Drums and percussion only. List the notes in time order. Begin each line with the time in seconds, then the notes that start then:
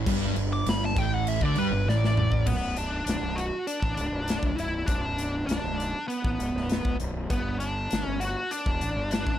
0.06 kick, crash
0.36 crash
0.66 snare, crash
0.96 kick, crash
1.27 crash
1.41 kick
1.55 crash
1.89 snare
2.04 snare
2.17 mid tom
2.32 kick
2.47 kick, crash
2.77 closed hi-hat
3.07 snare, closed hi-hat
3.38 closed hi-hat
3.67 closed hi-hat
3.83 kick
3.97 closed hi-hat
4.28 snare, closed hi-hat
4.43 kick
4.59 closed hi-hat
4.88 kick, closed hi-hat
5.18 closed hi-hat
5.49 snare, closed hi-hat
5.80 closed hi-hat
6.10 closed hi-hat
6.24 kick
6.40 closed hi-hat
6.57 snare
6.70 snare, closed hi-hat
6.85 kick
7.00 closed hi-hat
7.30 kick, closed hi-hat
7.60 closed hi-hat
7.91 snare, closed hi-hat
8.21 closed hi-hat
8.51 closed hi-hat
8.66 kick
8.81 closed hi-hat
9.11 snare, closed hi-hat
9.27 kick